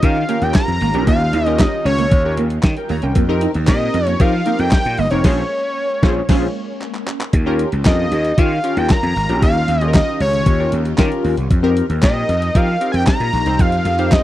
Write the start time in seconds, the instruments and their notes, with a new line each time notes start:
Already playing: string machine D#3 C#4 F4 G4
0.03 slap bass D#3, analog polysynth C#4 F4 G4 A#4, analog synth lead F5, kick, closed hi-hat
0.28 clean electric guitar A#3, analog polysynth C#4 F4 G4 A#4, closed hi-hat
0.42 slap bass D#2, analog synth lead G5, closed hi-hat
0.54 analog synth lead A#5, muted clean electric guitar stroke, kick, snare, clap, closed hi-hat
0.68 slap bass F2, closed hi-hat
0.80 slap bass G#1, clean electric guitar A#3, open hi-hat
0.94 slap bass A#1, analog polysynth C#4 F4 G4 A#4, clean electric guitar C#4, closed hi-hat
1.07 slap bass D#2, clean electric guitar A#3, analog synth lead F5, kick, closed hi-hat
1.33 slap bass D#2, clean electric guitar D#4, closed hi-hat
1.46 analog polysynth C#4 F4 G4 A#4, analog synth lead D#5, muted clean electric guitar stroke, closed hi-hat
1.59 analog synth lead D#5, muted clean electric guitar stroke, kick, snare, clap, closed hi-hat
1.85 slap bass C#2, clean electric guitar C#4, analog synth lead C#5, closed hi-hat
1.98 clean electric guitar A#3, closed hi-hat
2.11 slap bass D#2, kick, closed hi-hat
2.25 analog polysynth C#4 F4 G4 A#4
2.37 slap bass D#2, clean electric guitar A#3, closed hi-hat
2.50 closed hi-hat
2.63 slap bass D#3, muted clean electric guitar stroke, kick, snare, clap, closed hi-hat
2.77 analog polysynth A#4 G5, closed hi-hat
2.89 slap bass D#2, clean electric guitar A#3, analog polysynth C#5 A#5, open hi-hat
3.02 slap bass C2, clean electric guitar C#4, analog polysynth A#4 G5, closed hi-hat
3.15 slap bass F2, string machine F3 D#4 G4 A#4, clean electric guitar A#3, kick, closed hi-hat
3.29 analog polysynth C4 D#4 G4 A#4
3.41 clean electric guitar D#4, closed hi-hat
3.54 slap bass D#2, muted clean electric guitar stroke, closed hi-hat
3.67 slap bass A#2, analog polysynth C4 D#4 G4 A#4, analog synth lead D#5, muted clean electric guitar stroke, kick, snare, clap, closed hi-hat
3.94 slap bass F2, clean electric guitar C4, closed hi-hat
4.06 clean electric guitar A#3, analog synth lead C#5, closed hi-hat
4.20 slap bass F3, analog polysynth C4 D#4 G4 A#4, analog synth lead F5, kick, closed hi-hat
4.46 clean electric guitar A#3, analog polysynth C4 D#4 G4 A#4, closed hi-hat
4.59 slap bass F2, analog synth lead G5, closed hi-hat
4.71 kick, snare, clap, closed hi-hat
4.85 slap bass A#2, closed hi-hat
4.97 slap bass G1, clean electric guitar A#3, analog synth lead D#5, open hi-hat
5.11 slap bass F1, clean electric guitar C4, analog polysynth C4 D#4 G4 A#4, analog synth lead C#5, closed hi-hat
5.24 slap bass A#1, string machine G#3 A#3 C#4, analog polysynth C#4 F4 G#4 C5, kick, snare, crash
6.03 slap bass A#1, analog polysynth C#4 F4 G#4 C5, kick, snare
6.29 slap bass A#1, analog polysynth C#4 F4 G#4 C5, kick, snare, crash
6.82 clap
6.95 clap
7.08 clap
7.21 clap
7.33 slap bass D#2, string machine D#3 C#4 F4 G4, kick, closed hi-hat
7.46 analog polysynth C#4 F4 G4 A#4
7.59 closed hi-hat
7.72 slap bass C#2, closed hi-hat
7.85 slap bass F2, analog polysynth C#4 F4 G4 A#4, analog synth lead D#5, kick, snare, clap, closed hi-hat
8.11 slap bass D#2, closed hi-hat
8.25 closed hi-hat
8.38 slap bass D#3, analog polysynth C#4 F4 G4 C#5, analog synth lead F5, kick, closed hi-hat
8.64 analog polysynth C#4 F4 G4 A#4, closed hi-hat
8.77 slap bass D#2, analog synth lead G5, closed hi-hat
8.89 analog synth lead A#5, kick, snare, clap, closed hi-hat
9.03 slap bass F2, closed hi-hat
9.16 slap bass G#1, open hi-hat
9.29 slap bass A#1, analog polysynth C#4 F4 G4 A#4, closed hi-hat
9.42 slap bass D#2, analog synth lead F5, kick, closed hi-hat
9.68 slap bass D#2, closed hi-hat
9.81 analog polysynth C#4 F4 G4 G#4, closed hi-hat
9.88 analog polysynth A#4
9.94 analog synth lead D#5, kick, snare, clap, closed hi-hat
10.20 slap bass C#2, analog synth lead C#5, closed hi-hat
10.33 closed hi-hat
10.46 slap bass D#2, kick, closed hi-hat
10.59 analog polysynth C#4 F4 G4 A#4
10.72 slap bass D#2, closed hi-hat
10.85 closed hi-hat
10.98 slap bass D#3, analog polysynth C#4 F4 G4 A#4, kick, snare, clap, closed hi-hat
11.12 closed hi-hat
11.24 slap bass D#2, open hi-hat
11.37 slap bass C2, closed hi-hat
11.50 slap bass F2, string machine F3 D#4 G4 A#4, kick, closed hi-hat
11.63 analog polysynth C4 D#4 G4 A#4
11.77 closed hi-hat
11.90 slap bass D#2, closed hi-hat
12.02 slap bass A#2, analog polysynth C4 D#4 G4 A#4, analog synth lead D#5, kick, snare, clap, closed hi-hat
12.29 slap bass F2, closed hi-hat
12.42 closed hi-hat
12.55 slap bass F3, analog polysynth C4 D#4 G4 A#4, analog synth lead F5, kick, closed hi-hat
12.81 analog polysynth C4 D#4 G4 A#4, closed hi-hat
12.92 slap bass F2, analog synth lead G5 G#5, closed hi-hat
13.07 analog synth lead A#5, kick, snare, clap, closed hi-hat
13.20 slap bass A#2, closed hi-hat
13.33 slap bass A#1, open hi-hat
13.46 slap bass C2, analog polysynth C4 D#4 G4 C5, closed hi-hat
13.59 slap bass F2, analog synth lead F5, kick, closed hi-hat
13.72 closed hi-hat
13.85 slap bass F2, closed hi-hat
13.99 analog polysynth C4 D#4 G4 C5, closed hi-hat
14.12 analog synth lead D#5, kick, snare, clap, closed hi-hat